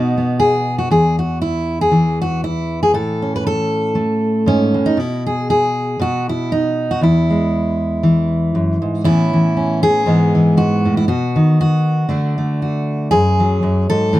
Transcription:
0.00 0.88 B2 medium
0.00 0.16 B3 soft
0.00 0.88 D#4 soft
0.00 0.39 F#4 soft
0.18 0.88 B3 soft
0.40 0.78 G#4 medium
0.78 0.90 F#4 medium
0.91 2.94 E2 medium
0.91 1.18 G#4 medium
1.19 1.41 F#4 medium
1.42 1.81 E4 medium
1.81 2.21 G#4 medium
1.91 3.95 E3 medium
2.22 2.43 F#4 medium
2.44 2.82 E4 medium
2.83 2.94 G#4 medium
2.94 4.73 A2 medium
2.94 3.34 A4 medium
3.22 4.46 C#4 soft
3.36 3.46 B4 medium
3.47 4.99 A4 loud
3.95 4.95 A3 medium
4.46 4.75 G#2 medium
4.46 4.98 C#4 medium
4.74 4.97 A2 medium
4.86 4.97 D#4 medium
4.97 5.96 B2 medium
4.97 5.26 E4 medium
5.26 5.49 G#4 medium
5.50 6.00 G#4 medium
5.99 6.99 B2 medium
5.99 6.29 F#4 loud
6.29 6.51 E4 medium
6.52 7.02 D#4 medium
6.91 7.02 F#4 medium
7.01 8.54 E2 medium
7.01 9.04 E4 medium
7.30 9.02 G#3 soft
8.03 9.02 E3 medium
8.55 8.81 F#2 medium
8.82 9.05 G#2 medium
9.04 10.06 A2 medium
9.04 9.32 E3 soft
9.04 10.04 B3 soft
9.04 9.56 C#4 soft
9.04 9.82 E4 loud
9.33 10.04 E3 medium
9.57 10.04 C#4 soft
9.83 10.57 G#4 loud
10.06 10.56 G#2 medium
10.06 10.34 E3 soft
10.06 11.06 G#3 soft
10.06 12.10 B3 soft
10.35 11.06 E3 medium
10.57 10.85 G#2 medium
10.57 10.97 F#4 loud
10.85 11.07 A2 medium
10.97 11.08 E4 medium
11.08 11.36 B2 medium
11.08 11.59 F#4 medium
11.36 12.07 D#3 medium
11.61 12.61 F#4 medium
12.09 13.11 D3 medium
12.09 12.37 A3 soft
12.09 13.09 D4 medium
12.38 13.09 A3 medium
12.62 13.09 F#4 medium
13.11 13.61 F#2 medium
13.11 13.89 G#4 loud
13.40 14.10 F#3 medium
13.63 13.90 F#2 medium
13.90 14.13 G#2 medium
13.90 14.20 A4 loud
14.13 14.20 A2 medium
14.13 14.20 E3 medium
14.13 14.20 A3 medium
14.13 14.20 C4 soft

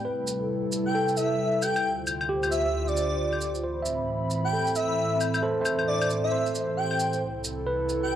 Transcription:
0.05 1.82 C3 medium
0.05 1.82 G3 medium
0.05 1.82 E4 medium
0.05 1.82 A4 medium
0.05 1.00 B4 medium
0.27 shaker medium
0.72 shaker soft
0.86 1.09 G5 medium
0.95 1.90 A4 medium
1.08 shaker soft
1.17 1.61 E5 medium
1.17 shaker soft
1.62 1.90 G5 medium
1.62 claves soft
1.62 shaker soft
1.76 claves medium
1.76 shaker soft
1.84 3.61 D2 medium
1.84 3.61 D3 medium
1.84 3.61 F4 medium
1.84 3.61 C5 medium
2.07 claves medium
2.07 shaker soft
2.21 claves medium
2.29 3.24 G4 medium
2.43 claves medium
2.43 shaker soft
2.51 2.62 E5 medium
2.51 shaker soft
2.65 2.85 E5 medium
2.87 3.49 D5 medium
2.87 shaker soft
2.97 shaker soft
3.33 claves soft
3.41 shaker soft
3.55 shaker soft
3.63 7.18 A2 medium
3.63 7.18 E3 medium
3.63 7.18 C4 medium
3.63 4.58 C5 soft
3.63 5.41 B5 medium
3.82 4.71 E5 soft
3.82 shaker soft
4.30 shaker soft
4.45 4.68 G5 medium
4.53 5.41 A4 soft
4.67 shaker soft
4.75 5.39 E5 loud
4.75 shaker soft
5.21 claves soft
5.21 shaker soft
5.34 claves medium
5.34 shaker soft
5.42 6.37 A4 medium
5.42 7.20 C5 medium
5.42 5.60 C5 medium
5.61 6.30 C5 soft
5.61 6.50 E5 soft
5.65 claves medium
5.65 shaker soft
5.79 claves medium
5.87 6.11 D5 medium
6.02 claves medium
6.02 shaker soft
6.10 shaker soft
6.24 6.47 E5 medium
6.32 7.27 C5 medium
6.46 shaker soft
6.55 shaker soft
6.77 7.13 G5 medium
6.91 claves soft
7.00 shaker soft
7.13 shaker soft
7.21 8.16 C2 medium
7.21 8.16 C3 medium
7.21 8.16 E4 medium
7.21 8.16 A4 medium
7.44 shaker medium
7.67 8.16 B4 medium
7.89 shaker soft
8.03 8.16 G5 medium

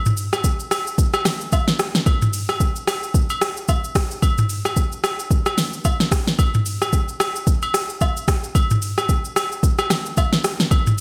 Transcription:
0.06 mid tom loud
0.06 shaker medium
0.17 open hi-hat medium
0.17 shaker medium
0.33 cross-stick medium
0.33 high agogo medium
0.33 shaker medium
0.44 kick medium
0.44 shaker medium
0.60 shaker medium
0.71 cross-stick loud
0.71 open hi-hat medium
0.71 high agogo medium
0.71 shaker medium
0.87 shaker medium
0.98 kick loud
0.98 shaker medium
1.13 cross-stick loud
1.13 high agogo medium
1.13 shaker medium
1.25 cross-stick loud
1.25 snare medium
1.25 open hi-hat medium
1.25 shaker loud
1.41 shaker medium
1.52 kick medium
1.52 high agogo medium
1.52 low woodblock medium
1.52 shaker medium
1.68 snare medium
1.68 shaker medium
1.79 cross-stick loud
1.79 open hi-hat medium
1.79 shaker medium
1.95 snare medium
1.95 shaker soft
2.06 kick loud
2.06 high agogo medium
2.06 shaker medium
2.22 mid tom loud
2.22 shaker medium
2.33 open hi-hat medium
2.33 shaker medium
2.49 cross-stick medium
2.49 high agogo medium
2.49 shaker medium
2.60 kick medium
2.60 shaker medium
2.76 shaker medium
2.87 cross-stick loud
2.87 open hi-hat medium
2.87 high agogo medium
2.87 shaker medium
3.03 shaker medium
3.14 kick loud
3.14 shaker medium
3.30 high agogo medium
3.30 shaker medium
3.41 cross-stick loud
3.41 open hi-hat medium
3.41 shaker loud
3.57 shaker medium
3.68 kick medium
3.68 high agogo medium
3.68 low woodblock medium
3.68 shaker medium
3.84 shaker medium
3.95 kick loud
3.95 cross-stick loud
3.95 open hi-hat medium
3.95 shaker medium
4.11 shaker medium
4.22 kick loud
4.22 high agogo medium
4.22 shaker medium
4.38 mid tom loud
4.38 shaker medium
4.49 open hi-hat medium
4.49 shaker loud
4.65 cross-stick medium
4.65 high agogo medium
4.65 shaker medium
4.76 kick medium
4.76 shaker medium
4.92 shaker medium
5.04 cross-stick loud
5.04 open hi-hat medium
5.04 high agogo medium
5.04 shaker medium
5.19 shaker medium
5.31 kick loud
5.31 shaker medium
5.46 cross-stick loud
5.46 high agogo medium
5.46 shaker medium
5.58 snare medium
5.58 open hi-hat medium
5.58 shaker loud
5.73 shaker medium
5.85 kick medium
5.85 high agogo medium
5.85 low woodblock medium
5.85 shaker medium
6.00 snare medium
6.00 shaker medium
6.12 kick loud
6.12 cross-stick loud
6.12 open hi-hat medium
6.12 shaker medium
6.27 snare medium
6.27 shaker medium
6.39 kick loud
6.39 high agogo medium
6.39 shaker medium
6.54 mid tom loud
6.54 shaker medium
6.66 open hi-hat medium
6.66 shaker medium
6.82 cross-stick medium
6.82 high agogo medium
6.82 shaker medium
6.93 kick medium
6.93 shaker medium
7.09 shaker soft
7.20 cross-stick loud
7.20 open hi-hat medium
7.20 high agogo medium
7.20 shaker medium
7.36 shaker medium
7.47 kick loud
7.47 shaker medium
7.62 high agogo medium
7.62 shaker medium
7.74 cross-stick loud
7.74 open hi-hat medium
7.74 shaker loud
7.90 shaker medium
8.01 kick medium
8.01 high agogo medium
8.01 low woodblock medium
8.01 shaker medium
8.17 shaker medium
8.28 kick loud
8.28 cross-stick loud
8.28 open hi-hat medium
8.28 shaker medium
8.44 shaker soft
8.55 kick loud
8.55 high agogo medium
8.55 shaker medium
8.70 mid tom loud
8.70 shaker medium
8.82 open hi-hat medium
8.82 shaker medium
8.98 cross-stick medium
8.98 high agogo medium
8.98 shaker medium
9.09 kick medium
9.09 shaker medium
9.25 shaker soft
9.36 cross-stick loud
9.36 open hi-hat medium
9.36 high agogo medium
9.36 shaker medium
9.52 shaker medium
9.63 kick loud
9.63 shaker medium
9.78 cross-stick medium
9.78 high agogo medium
9.78 shaker medium
9.90 cross-stick loud
9.90 snare medium
9.90 open hi-hat medium
9.90 shaker loud
10.06 shaker medium
10.17 kick loud
10.17 high agogo medium
10.17 low woodblock medium
10.17 shaker medium
10.33 snare medium
10.33 shaker medium
10.44 cross-stick loud
10.44 open hi-hat medium
10.44 shaker loud
10.60 snare medium
10.60 shaker soft
10.71 kick loud
10.71 high agogo medium
10.71 shaker medium
10.87 mid tom loud
10.87 shaker medium

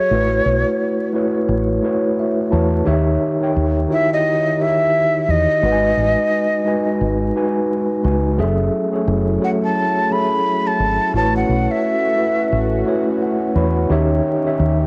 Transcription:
0.00 0.12 F#3 medium
0.00 0.12 F#4 medium
0.00 0.11 G#4 medium
0.00 0.12 A4 medium
0.00 1.14 C#5 medium
0.00 0.11 E5 medium
0.00 0.12 F#5 medium
0.11 0.40 A1 medium
0.11 0.91 A3 medium
0.11 0.91 E4 medium
0.11 0.92 F#4 loud
0.11 0.92 B4 medium
0.11 0.92 C#5 loud
0.46 0.63 B1 medium
1.13 1.69 A3 medium
1.13 1.69 E4 medium
1.13 1.69 F#4 medium
1.13 1.70 B4 medium
1.13 1.70 C#5 medium
1.49 1.78 A1 medium
1.82 2.38 A3 medium
1.82 2.38 E4 medium
1.82 2.39 F#4 medium
1.82 2.39 B4 medium
1.82 2.39 C#5 loud
2.19 2.50 E5 medium
2.50 2.82 E2 medium
2.50 2.78 A3 medium
2.50 2.79 E4 medium
2.50 2.79 F#4 medium
2.50 2.79 B4 medium
2.50 2.80 C#5 medium
2.50 2.84 A5 medium
2.84 3.16 D#2 medium
2.84 3.25 D#3 loud
2.84 3.26 D#4 loud
2.84 3.26 G4 loud
2.84 3.26 C#5 loud
2.84 3.27 E5 loud
3.40 3.79 D#3 medium
3.40 3.79 D#4 medium
3.40 3.80 G4 medium
3.40 3.80 C#5 medium
3.40 3.80 G5 medium
3.56 3.85 D#2 medium
3.88 4.44 D#3 medium
3.88 4.44 D#4 medium
3.88 4.46 E4 medium
3.88 3.97 F#4 medium
3.88 4.45 C#5 medium
3.93 4.48 G4 medium
3.93 4.10 E5 loud
4.13 4.63 D#5 loud
4.58 5.38 D#3 medium
4.58 5.39 D#4 medium
4.58 5.39 G4 medium
4.58 5.40 C#5 medium
4.58 5.40 E5 medium
4.58 5.32 E5 loud
5.29 5.46 E2 medium
5.29 7.36 D#5 loud
5.62 5.92 G#1 medium
5.62 6.42 G#3 loud
5.62 6.43 D#4 medium
5.62 6.43 F#4 medium
5.62 6.44 B4 loud
5.62 5.71 F#5 medium
5.72 6.47 G#5 loud
5.97 6.14 A1 medium
6.65 7.20 G#3 medium
6.65 7.21 D#4 medium
6.65 7.21 F#4 medium
6.65 7.21 B4 medium
6.65 7.22 G#5 medium
7.01 7.30 G#1 medium
7.34 7.90 G#3 medium
7.34 7.90 D#4 medium
7.34 7.90 F#4 medium
7.34 7.91 B4 medium
7.34 7.91 G#5 medium
8.03 8.40 C#2 medium
8.03 8.31 G#3 medium
8.03 8.31 D#4 medium
8.03 8.31 F#4 medium
8.03 8.32 B4 medium
8.03 8.32 G#5 medium
8.38 8.68 F#1 loud
8.38 8.78 F#3 loud
8.38 11.11 F#3 medium
8.38 11.11 A3 medium
8.38 8.78 C#4 loud
8.38 11.11 E4 medium
8.38 8.78 G#4 loud
8.38 8.79 A4 loud
8.38 8.79 E5 loud
8.92 9.30 F#3 medium
8.92 9.31 C#4 medium
8.92 9.31 G#4 medium
8.92 9.32 A4 medium
8.92 9.32 C#5 medium
9.08 9.37 F#1 loud
9.40 9.96 F#3 medium
9.40 9.96 C#4 medium
9.40 9.97 F#4 medium
9.40 9.97 A4 medium
9.40 9.97 C#5 medium
9.44 9.50 F#5 medium
9.64 10.14 A5 medium
10.10 10.91 F#3 medium
10.10 10.91 C#4 medium
10.10 10.91 G#4 medium
10.10 10.92 A4 medium
10.10 10.92 E5 medium
10.10 10.69 B5 loud
10.67 11.14 A5 medium
10.80 10.97 G#1 medium
11.13 11.43 A1 loud
11.13 13.86 A3 medium
11.13 11.94 A3 medium
11.13 14.87 C#4 medium
11.13 11.94 E4 medium
11.13 13.86 F#4 medium
11.13 11.95 F#4 medium
11.13 11.95 B4 medium
11.13 11.34 A5 loud
11.17 11.96 C#5 loud
11.36 11.73 F#5 medium
11.49 11.66 B1 medium
11.71 13.08 E5 medium
12.16 12.72 A3 medium
12.16 12.72 E4 medium
12.16 12.72 F#4 medium
12.16 12.73 B4 medium
12.16 12.73 E5 medium
12.53 12.82 A1 medium
12.85 13.41 A3 loud
12.85 13.41 E4 medium
12.85 13.42 F#4 medium
12.85 13.42 B4 medium
12.85 13.42 C#5 loud
13.22 13.53 F#5 medium
13.55 13.85 E2 medium
13.55 13.82 A3 medium
13.55 13.83 E4 medium
13.55 13.83 F#4 medium
13.55 13.83 B4 medium
13.55 13.84 C#5 medium
13.55 13.87 B5 medium
13.88 14.20 D#2 medium
13.88 14.87 D#3 medium
13.88 14.29 D#3 loud
13.88 14.87 D#4 medium
13.88 14.30 D#4 loud
13.88 14.87 G4 medium
13.88 14.30 G4 loud
13.88 14.30 C#5 loud
13.88 14.31 E5 loud
14.44 14.82 D#3 medium
14.44 14.83 D#4 medium
14.44 14.83 G4 medium
14.44 14.84 C#5 medium
14.44 14.84 E5 loud
14.60 14.87 D#2 medium

